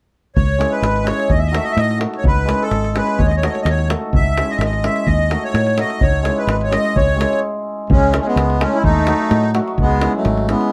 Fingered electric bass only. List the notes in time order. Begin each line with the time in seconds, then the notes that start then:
0.36 C#2
0.82 G#1
1.30 D#2
1.77 A2
2.24 C#2
2.71 G#1
3.19 D#2
3.65 D#2
4.13 C#2
4.58 G#1
5.07 D#2
5.54 A2
6.01 C#2
6.47 G#1
6.96 C#2
7.90 C#2
8.36 C#2
8.83 D#2
9.31 A2
9.78 C#2
10.25 G#1